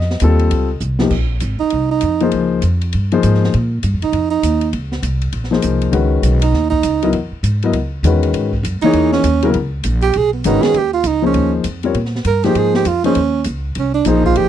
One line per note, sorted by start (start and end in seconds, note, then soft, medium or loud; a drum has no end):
0.00 0.20 F2 medium
0.00 0.78 D#5 medium
0.00 snare soft
0.10 snare soft
0.20 0.50 D#2 loud
0.20 0.67 G3 medium
0.20 0.67 C4 medium
0.20 0.67 F4 medium
0.20 0.68 A4 medium
0.20 hi-hat pedal medium
0.20 ride medium
0.39 ride soft
0.51 0.80 C#2 medium
0.51 ride medium
0.80 1.10 C2 medium
0.80 hi-hat pedal medium
0.99 1.10 F3 medium
0.99 1.11 A#3 medium
0.99 1.11 D#4 medium
0.99 1.11 G4 medium
0.99 snare medium
1.10 1.40 A#1 medium
1.10 kick medium
1.10 crash medium
1.40 1.59 G#1 medium
1.40 hi-hat pedal medium
1.40 ride medium
1.60 1.88 D#4 medium
1.60 muted upright bass stroke soft
1.70 2.01 C2 medium
1.70 ride medium
1.91 2.30 D#4 medium
2.01 2.31 F2 medium
2.01 hi-hat pedal soft
2.01 ride medium
2.20 2.60 F3 medium
2.20 2.60 A#3 medium
2.20 2.60 D#4 medium
2.20 2.61 G#4 medium
2.20 2.61 C5 medium
2.20 ride soft
2.31 2.62 C#2 medium
2.31 ride medium
2.62 2.92 F2 medium
2.62 hi-hat pedal medium
2.62 ride medium
2.81 ride soft
2.93 3.22 G2 medium
2.93 ride medium
3.12 3.51 F3 medium
3.12 3.51 A#3 medium
3.12 3.51 D#4 medium
3.12 3.51 G#4 medium
3.12 3.52 C5 medium
3.12 ride soft
3.23 3.52 G#2 medium
3.23 hi-hat pedal medium
3.23 ride medium
3.34 snare soft
3.44 snare soft
3.54 3.83 A#2 medium
3.54 ride medium
3.83 3.95 G2 medium
3.83 hi-hat pedal medium
3.83 ride medium
3.94 4.02 F2 medium
4.02 4.12 C#2 medium
4.02 4.30 D#4 medium
4.02 ride soft
4.13 4.42 F2 medium
4.13 ride medium
4.30 4.70 D#4 medium
4.43 4.72 D#2 medium
4.43 hi-hat pedal medium
4.43 ride medium
4.61 ride soft
4.73 5.02 C#2 medium
4.73 ride medium
4.92 snare soft
5.03 5.32 C2 loud
5.03 hi-hat pedal medium
5.03 ride medium
5.21 ride soft
5.32 5.62 A#1 medium
5.32 ride medium
5.44 snare soft
5.51 5.91 F3 medium
5.51 5.91 A#3 medium
5.51 5.91 D#4 medium
5.51 5.92 G#4 medium
5.51 5.92 C5 medium
5.51 snare soft
5.62 5.92 C2 medium
5.62 hi-hat pedal medium
5.62 ride medium
5.81 ride soft
5.92 6.22 C#2 medium
5.92 6.38 D#3 medium
5.92 6.38 G#3 medium
5.92 6.38 C#4 medium
5.92 6.39 F#4 medium
5.92 6.39 B4 medium
5.92 ride medium
6.23 6.52 B1 medium
6.23 hi-hat pedal medium
6.23 ride medium
6.42 6.70 D#4 medium
6.42 ride medium
6.52 6.82 D#2 medium
6.52 snare soft
6.70 7.10 D#4 medium
6.70 kick medium
6.83 7.12 C#2 medium
6.83 hi-hat pedal soft
6.83 ride medium
7.02 7.13 F#3 medium
7.02 7.13 B3 medium
7.02 7.13 E4 medium
7.02 7.14 A#4 medium
7.02 7.14 D#5 medium
7.02 ride soft
7.13 7.31 E2 medium
7.13 ride medium
7.32 muted upright bass stroke soft
7.43 7.72 G#2 medium
7.43 hi-hat pedal medium
7.43 ride medium
7.62 7.74 F#3 medium
7.62 7.74 B3 medium
7.62 7.74 E4 medium
7.62 7.74 A#4 medium
7.62 7.75 D#5 medium
7.62 ride soft
7.72 8.02 C#2 medium
7.72 ride medium
8.03 8.33 E2 medium
8.03 8.49 D#3 medium
8.03 8.50 G#3 medium
8.03 8.50 C#4 medium
8.03 8.50 F#4 medium
8.03 8.50 B4 medium
8.03 hi-hat pedal medium
8.03 ride medium
8.23 ride medium
8.33 8.63 G#2 medium
8.33 ride medium
8.53 kick soft
8.63 8.81 F#2 medium
8.63 hi-hat pedal soft
8.63 ride medium
8.82 9.23 E3 medium
8.82 9.23 A#3 medium
8.82 9.10 D#4 medium
8.82 9.23 D#4 medium
8.82 9.23 G#4 medium
8.82 9.24 C#5 medium
8.82 muted upright bass stroke soft
8.82 ride medium
8.93 9.23 E2 medium
8.93 ride medium
9.12 9.52 C#4 medium
9.12 snare medium
9.24 9.53 D#2 medium
9.24 hi-hat pedal medium
9.24 ride medium
9.42 9.53 C#3 medium
9.42 9.53 F#3 medium
9.42 9.54 B3 medium
9.42 9.54 E4 medium
9.42 9.54 A#4 medium
9.42 ride medium
9.54 9.84 C#2 medium
9.54 ride medium
9.83 10.14 A#1 medium
9.83 hi-hat pedal soft
9.83 ride medium
10.02 10.18 G4 medium
10.02 ride medium
10.13 10.45 B1 medium
10.13 10.33 G#4 loud
10.13 ride medium
10.33 10.48 B3 medium
10.44 10.62 G#1 loud
10.44 10.75 D#3 medium
10.44 10.75 G#3 medium
10.44 10.76 C#4 medium
10.44 10.64 D#4 loud
10.44 10.76 F#4 medium
10.44 10.76 B4 medium
10.44 hi-hat pedal medium
10.44 ride medium
10.62 10.79 G#4 loud
10.62 snare medium
10.62 ride soft
10.74 11.03 D#2 medium
10.74 10.93 G4 medium
10.74 ride medium
10.94 11.09 F4 medium
11.04 11.34 C#2 medium
11.04 11.25 D#4 medium
11.04 hi-hat pedal soft
11.04 ride medium
11.22 11.62 F3 medium
11.22 11.63 A#3 medium
11.22 11.63 D#4 medium
11.22 11.63 G#4 medium
11.22 11.63 C5 medium
11.26 11.53 C#4 medium
11.34 11.64 D#2 medium
11.34 ride medium
11.64 11.94 F2 medium
11.64 hi-hat pedal soft
11.64 ride medium
11.83 11.94 G3 medium
11.83 11.94 C4 medium
11.83 11.95 F4 medium
11.83 11.95 A#4 medium
11.83 11.95 C#5 medium
11.83 ride soft
11.94 12.24 A#2 medium
11.94 ride medium
12.05 snare soft
12.15 snare soft
12.25 12.55 G2 medium
12.25 12.46 A#4 medium
12.25 hi-hat pedal medium
12.25 ride medium
12.44 12.84 F3 medium
12.44 12.84 A#3 medium
12.44 12.84 D#4 medium
12.44 12.59 G4 medium
12.44 12.85 G#4 medium
12.44 12.85 C5 medium
12.44 snare soft
12.44 ride soft
12.55 12.85 G#2 medium
12.55 12.75 G#4 loud
12.55 ride medium
12.74 12.89 G4 medium
12.74 snare medium
12.85 13.15 F2 medium
12.85 13.05 F4 medium
12.85 hi-hat pedal soft
12.85 ride medium
13.04 13.15 F3 medium
13.04 13.15 A#3 medium
13.04 13.44 C#4 medium
13.04 13.15 D#4 medium
13.04 13.15 G#4 medium
13.04 13.16 C5 medium
13.04 ride soft
13.15 13.45 D#2 medium
13.15 ride medium
13.44 13.75 C#2 medium
13.44 hi-hat pedal medium
13.44 ride medium
13.75 14.05 C2 medium
13.75 ride medium
13.79 13.94 C#4 medium
13.94 14.08 D4 medium
14.05 14.35 A#1 medium
14.05 14.49 F3 medium
14.05 14.49 A#3 medium
14.05 14.25 D#4 medium
14.05 14.49 D#4 medium
14.05 14.49 G#4 medium
14.05 14.49 C5 medium
14.05 hi-hat pedal medium
14.05 ride medium
14.24 14.39 F4 loud
14.24 kick medium
14.35 14.49 G#1 medium
14.35 14.49 G4 loud
14.35 ride medium